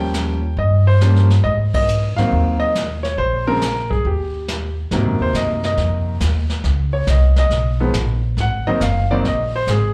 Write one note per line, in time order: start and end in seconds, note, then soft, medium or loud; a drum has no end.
0.00 0.53 D#2 medium
0.00 0.38 F3 medium
0.00 0.38 G3 medium
0.00 0.38 A#3 medium
0.00 0.38 C#4 medium
0.00 0.60 G5 medium
0.14 snare medium
0.14 hi-hat pedal medium
0.57 1.40 G2 medium
0.57 0.85 D#5 medium
0.57 brush sweep soft
0.87 1.27 C5 medium
1.01 1.28 F3 medium
1.01 1.28 G3 medium
1.01 1.28 A#3 medium
1.01 1.28 C#4 medium
1.01 snare medium
1.01 hi-hat pedal medium
1.16 snare soft
1.30 snare soft
1.44 2.13 G#2 medium
1.44 1.50 D#5 medium
1.44 brush sweep soft
1.74 2.19 D#5 loud
1.74 kick medium
1.74 ride medium
1.88 hi-hat pedal medium
2.16 2.72 D#3 medium
2.16 2.72 F#3 medium
2.16 2.73 A#3 medium
2.16 2.73 C4 medium
2.16 2.62 F5 medium
2.16 muted upright bass stroke soft
2.16 snare soft
2.32 3.14 D#2 medium
2.32 brush sweep soft
2.60 3.05 D#5 loud
2.75 snare medium
2.75 hi-hat pedal medium
3.03 3.17 C#5 medium
3.03 snare soft
3.17 4.01 A#1 medium
3.17 3.48 C5 medium
3.17 brush sweep soft
3.47 3.60 C#3 medium
3.47 3.61 F3 medium
3.47 3.61 G#3 medium
3.47 3.61 C4 medium
3.47 3.88 A#4 loud
3.61 snare medium
3.61 hi-hat pedal medium
3.90 4.05 G#4 medium
3.90 kick soft
4.05 4.87 D#2 medium
4.05 4.74 G4 medium
4.05 brush sweep soft
4.48 snare medium
4.48 hi-hat pedal medium
4.91 5.05 G#2 medium
4.91 6.13 C3 medium
4.91 6.13 D#3 medium
4.91 6.14 A#3 medium
4.91 6.14 F#4 medium
4.91 brush sweep soft
4.91 snare soft
5.05 5.19 F#2 medium
5.19 5.33 D#2 medium
5.19 5.35 C5 medium
5.33 5.76 F#2 medium
5.33 5.63 D#5 medium
5.33 snare medium
5.33 hi-hat pedal soft
5.63 6.05 D#5 medium
5.63 snare soft
5.77 6.20 F2 medium
5.77 brush sweep soft
5.77 snare soft
6.20 6.63 D#2 medium
6.20 snare medium
6.20 hi-hat pedal medium
6.50 snare soft
6.64 7.06 C#2 medium
6.64 brush sweep soft
6.64 snare soft
6.93 7.07 C#5 medium
7.07 7.49 C2 medium
7.07 7.37 D#5 medium
7.07 snare medium
7.07 hi-hat pedal medium
7.36 7.78 D#5 medium
7.36 snare soft
7.50 7.93 B1 medium
7.50 brush sweep soft
7.50 snare soft
7.80 7.93 D#3 medium
7.80 7.93 F3 medium
7.80 7.93 G#3 medium
7.80 7.93 B3 medium
7.94 8.36 A#1 medium
7.94 snare medium
7.94 hi-hat pedal medium
8.37 8.64 G#1 medium
8.37 8.67 F#5 medium
8.37 brush sweep soft
8.37 snare soft
8.66 8.80 D#3 medium
8.66 8.80 F#3 medium
8.66 8.80 A#3 medium
8.66 8.80 C4 medium
8.66 8.81 D#5 loud
8.66 muted upright bass stroke soft
8.80 9.23 F#1 medium
8.80 9.10 F5 medium
8.80 snare medium
8.80 hi-hat pedal medium
9.11 9.23 D#3 medium
9.11 9.24 F#3 medium
9.11 9.24 A#3 medium
9.11 9.24 C4 medium
9.11 9.24 D5 medium
9.24 9.66 A#1 medium
9.24 9.54 D#5 medium
9.24 brush sweep soft
9.24 snare soft
9.56 9.68 C5 medium
9.67 9.94 G#1 medium
9.67 9.94 G#4 medium
9.67 snare medium
9.67 hi-hat pedal soft